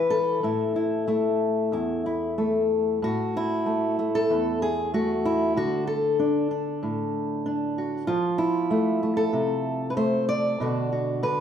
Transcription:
Already playing: E3 E4 B4
0.10 A4
0.43 A2 E4
0.76 E4
1.07 A3 E4
1.72 E2 E4
2.06 E4
2.38 A3 A4
3.02 A2 F#4
3.37 E4
3.66 A3
3.99 A3
4.15 A4
4.30 E2
4.62 G#4
4.94 A3 F#4
5.25 E4
5.56 D3 F#4
5.87 A4
6.19 D4
6.51 D4
6.83 A2
7.46 D4
7.78 F#4
8.07 F3 F4
8.38 E4
8.71 A3
9.03 A3
9.17 A4
9.33 C3
9.90 B4
9.97 A3 C5
10.29 D5
10.60 B2 D3 D4 F#4
10.92 F#4
11.23 D3 B4

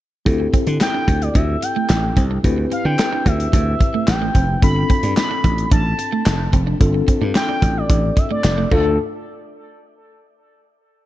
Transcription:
0.25 D2 C4 E4 G4 A4, kick, closed hi-hat
0.40 muted clean electric guitar stroke
0.53 C4, kick, closed hi-hat
0.67 D3 D4, closed hi-hat
0.81 G5, muted clean electric guitar stroke, snare, clap, closed hi-hat
0.94 D4
1.08 D2 D4, kick, closed hi-hat
1.22 D5, closed hi-hat
1.35 D2 D4 E5, kick, closed hi-hat
1.62 G5, muted clean electric guitar stroke, closed hi-hat
1.76 A3
1.89 A1, muted clean electric guitar stroke, snare, clap, closed hi-hat
2.17 C2 C4, kick, closed hi-hat
2.31 D4
2.43 D2 C4 E4 G4 B4, kick, closed hi-hat
2.58 muted clean electric guitar stroke
2.72 C4 F5, closed hi-hat
2.85 D3 D4 G5
2.99 muted clean electric guitar stroke, snare, clap, closed hi-hat
3.13 D4
3.26 D2 D4 E5, kick, closed hi-hat
3.40 closed hi-hat
3.53 D2 D4, kick, closed hi-hat
3.80 muted clean electric guitar stroke, kick, closed hi-hat
3.94 A3
4.07 A1 G5, muted clean electric guitar stroke, snare, clap, closed hi-hat
4.22 A3
4.35 F1 C4, kick, closed hi-hat
4.62 G1 C4 D4 F4 A4 B5, kick, closed hi-hat
4.76 muted clean electric guitar stroke
4.90 C4, kick, closed hi-hat
5.03 G2 D4, closed hi-hat
5.17 B5, muted clean electric guitar stroke, snare, clap, closed hi-hat
5.31 D4
5.44 A1 D4, kick, closed hi-hat
5.58 closed hi-hat
5.71 A1 D4 A5, kick, closed hi-hat
5.99 muted clean electric guitar stroke, closed hi-hat
6.12 A3
6.26 F1, muted clean electric guitar stroke, snare, clap, closed hi-hat
6.53 F1 C4, kick, closed hi-hat
6.67 D4
6.80 G1 C4 D4 F4 A4, kick, closed hi-hat
6.94 muted clean electric guitar stroke
7.08 C4, kick, closed hi-hat
7.21 G2 D4
7.35 G5, muted clean electric guitar stroke, snare, clap, closed hi-hat
7.49 D4
7.62 A1 D4, kick, closed hi-hat
7.77 D5
7.90 A1 D4, kick, closed hi-hat
8.17 E5, muted clean electric guitar stroke, kick, closed hi-hat
8.31 A3 D5
8.44 F1, muted clean electric guitar stroke, snare, clap, closed hi-hat
8.58 A3
8.71 D2 A3 D4 F4 A4, kick, crash

